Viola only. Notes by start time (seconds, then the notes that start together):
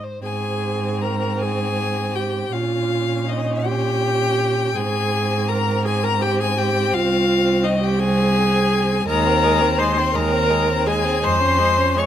0.23 G#4
1.03 A#4
1.41 G#4
2.15 G4
2.53 F4
3.28 D#4
3.65 G4
4.75 G#4
5.49 A#4
5.85 G#4
6.03 A#4
6.21 G4
6.40 G#4
6.58 G4
6.94 F4
7.64 D#4
7.82 G4
7.98 G#4
9.07 A#4
9.78 C5
10.14 A#4
10.86 G#4
11.23 C5
11.98 C#5